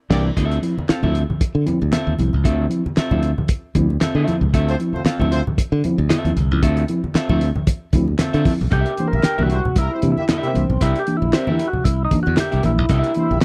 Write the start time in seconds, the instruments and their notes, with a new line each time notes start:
0.10 fingered electric bass C2, tine electric piano E3 A#3 D4, horn section A#3 D4 G4 D5, clean electric guitar C4 E4 A#4 D5, kick, snare, crash
0.36 fingered electric bass D2, tine electric piano D3, clean electric guitar C4 F4 A4 E5, kick, closed hi-hat, muted conga
0.51 tine electric piano C4 E4, closed hi-hat
0.62 tine electric piano F3 C4 E4, closed hi-hat, muted conga
0.78 muted fingered electric bass stroke, high conga
0.89 clean electric guitar C4 F4 A4 F5, muted fingered electric bass stroke, snare, clap, closed hi-hat, muted conga
1.03 fingered electric bass D2, tine electric piano F3 C4 E4, clean electric guitar C4 F4 A4 E5, high conga, low conga
1.15 closed hi-hat, muted conga
1.30 tine electric piano D3, low conga
1.41 muted fingered electric bass stroke, kick, closed hi-hat, muted conga
1.55 fingered electric bass D3
1.66 tine electric piano F3 C4 E4, closed hi-hat, muted conga, high conga
1.82 fingered electric bass D2, high conga
1.92 clean electric guitar C4 F4 A4 E5, tine electric piano C4 E4, snare, clap, closed hi-hat, muted conga, high conga
2.07 fingered electric bass D#2, tine electric piano D3
2.19 fingered electric bass C2, tine electric piano F3 C4 E4, closed hi-hat, muted conga, high conga
2.33 fingered electric bass C#2, low conga
2.44 fingered electric bass D2, tine electric piano D3, clean electric guitar C4 F4 A4 E5, kick, closed hi-hat
2.60 tine electric piano C4 E4
2.69 tine electric piano F3 C4 E4, closed hi-hat, muted conga
2.86 muted fingered electric bass stroke, high conga
2.97 clean electric guitar C4 F4 A4 E5, muted fingered electric bass stroke, snare, clap, closed hi-hat, muted conga
3.11 fingered electric bass D2, tine electric piano F3 C4 E4, clean electric guitar C4 F4 A4 E5, high conga, low conga
3.23 closed hi-hat, muted conga
3.38 tine electric piano D3, low conga
3.48 kick, closed hi-hat
3.75 fingered electric bass D2, tine electric piano F3 C4 E4, kick, closed hi-hat, muted conga, high conga
3.90 high conga
4.01 clean electric guitar C4 F4 A4 E5, snare, clap, closed hi-hat, muted conga, high conga
4.15 fingered electric bass D3, clean electric guitar C4 F4 A4 E5
4.27 tine electric piano F3 C4 E4, closed hi-hat, muted conga, high conga
4.41 fingered electric bass C#2, low conga
4.53 fingered electric bass D2, tine electric piano D3, clean electric guitar C4 F4 A4 E5, kick, closed hi-hat, muted conga
4.68 horn section A3 C4 F4 C5, tine electric piano C4 E4, closed hi-hat
4.80 tine electric piano F3 C4 E4, closed hi-hat
4.93 horn section A3 C4 F4 C5, muted fingered electric bass stroke, high conga
5.04 clean electric guitar C4 F4 A4 F5, muted fingered electric bass stroke, snare, clap, closed hi-hat
5.19 fingered electric bass D2, tine electric piano F3 C4 E4, clean electric guitar C4 F4 A4 E5, high conga, low conga
5.31 horn section A3 C4 F4 C5, closed hi-hat, muted conga
5.47 tine electric piano D3, low conga
5.58 muted fingered electric bass stroke, kick, closed hi-hat, muted conga
5.72 fingered electric bass D3
5.84 tine electric piano F3 C4 E4, closed hi-hat, muted conga, high conga
5.98 fingered electric bass D2, high conga
6.09 clean electric guitar C4 F4 A4 E5, snare, clap, closed hi-hat, muted conga, high conga
6.25 fingered electric bass D#2, tine electric piano F3 C4 E4, closed hi-hat
6.36 fingered electric bass C2, tine electric piano D3, closed hi-hat, high conga
6.51 fingered electric bass C#2, tine electric piano F3 C4 E4, low conga
6.62 fingered electric bass D2, tine electric piano D3, clean electric guitar C4 F4 A4 E5, kick, closed hi-hat
6.77 tine electric piano C4 E4, closed hi-hat
6.88 tine electric piano F3 C4 E4, closed hi-hat, muted conga
7.04 muted fingered electric bass stroke, high conga
7.15 clean electric guitar C4 F4 A4 E5, muted fingered electric bass stroke, snare, clap, closed hi-hat
7.29 fingered electric bass D2, tine electric piano F3 C4 E4, clean electric guitar C4 F4 A4 E5, high conga, low conga
7.41 closed hi-hat
7.55 tine electric piano D3, low conga
7.67 kick, closed hi-hat, muted conga
7.93 fingered electric bass D2, tine electric piano F3 C4 E4, kick, closed hi-hat, high conga
8.08 high conga
8.19 clean electric guitar C4 F4 A4 E5, tine electric piano C4 E4, snare, clap, closed hi-hat, muted conga, high conga
8.33 fingered electric bass D3, tine electric piano D3, clean electric guitar C4 F4 A4 E5, closed hi-hat
8.45 tine electric piano F3 C4 E4, kick, open hi-hat, high conga
8.61 fingered electric bass B1, low conga
8.71 fingered electric bass C2, tine electric piano C3, clean electric guitar D4 G4 A#4 E5, tonewheel organ G4, kick, closed hi-hat
8.86 tine electric piano A#3 D4, closed hi-hat
8.97 tine electric piano E3 A#3 D4, horn section G3 C4 E4 C5, closed hi-hat, muted conga
9.07 tonewheel organ A#4
9.13 fingered electric bass A#1, horn section A#3 E4 G4 E5, high conga
9.23 clean electric guitar D4 G4 A#4 G5, snare, clap, closed hi-hat
9.38 fingered electric bass C2, tine electric piano E3 A#3 D4, horn section A#3 E4 G4 E5, clean electric guitar D4 G4 A#4 E5, high conga
9.42 tonewheel organ F#4
9.50 horn section G3 C4 E4 C5, closed hi-hat
9.65 tine electric piano C3, low conga
9.76 fingered electric bass C2, horn section G3 A#3 E4 A#4, tonewheel organ E4, kick, closed hi-hat
9.93 horn section G3 C4 E4 C5
10.02 fingered electric bass C3, tine electric piano E3 A#3 D4, closed hi-hat, muted conga, high conga
10.12 tonewheel organ E4
10.16 horn section A#3 E4 G4 E5, high conga
10.29 tine electric piano A#3 D4, clean electric guitar D4 G4 A#4 E5, snare, clap, closed hi-hat, muted conga, high conga
10.42 tine electric piano C3, horn section A#3 E4 G4 E5, closed hi-hat
10.47 tonewheel organ C4
10.54 fingered electric bass C2, tine electric piano E3 A#3 D4, closed hi-hat, high conga
10.70 fingered electric bass B1, low conga
10.81 fingered electric bass C2, tine electric piano C3, clean electric guitar D4 G4 A#4 E5, tonewheel organ E4, kick, closed hi-hat, muted conga
10.95 tine electric piano A#3 D4, tonewheel organ G4, closed hi-hat
11.07 tine electric piano E3 A#3 D4, closed hi-hat
11.17 tonewheel organ E4
11.22 fingered electric bass A#1, high conga
11.33 tonewheel organ C4, clean electric guitar D4 G4 A#4 E5, snare, clap, closed hi-hat, muted conga
11.47 tine electric piano E3 A#3 D4, clean electric guitar D4 G4 A#4 E5, high conga
11.52 tonewheel organ E4
11.59 closed hi-hat, muted conga
11.68 tonewheel organ F#4
11.73 tine electric piano C3, low conga
11.84 fingered electric bass C2, tonewheel organ E4, kick, closed hi-hat, muted conga
12.05 tonewheel organ D#4
12.11 tine electric piano E3 A#3 D4, kick, closed hi-hat, muted conga, high conga
12.23 fingered electric bass E2, tonewheel organ F#4, high conga
12.37 tine electric piano A#3 D4, clean electric guitar D4 G4 A#4 E5, tonewheel organ G4, snare, clap, closed hi-hat, muted conga, high conga
12.51 fingered electric bass C2, tine electric piano C3, clean electric guitar D4 G4 A#4 E5, closed hi-hat
12.63 fingered electric bass A#1, tine electric piano E3 A#3 D4, tonewheel organ E4, closed hi-hat, muted conga, high conga
12.78 fingered electric bass B1, low conga
12.89 fingered electric bass C2, tine electric piano C3, clean electric guitar D4 G4 A#4 E5, kick, closed hi-hat, muted conga
13.04 tine electric piano A#3 D4, closed hi-hat
13.14 tine electric piano E3 A#3 D4, horn section G3 C4 E4 C5, closed hi-hat, muted conga
13.30 fingered electric bass A#1, horn section A#3 E4 G4 E5, high conga
13.41 snare, clap, closed hi-hat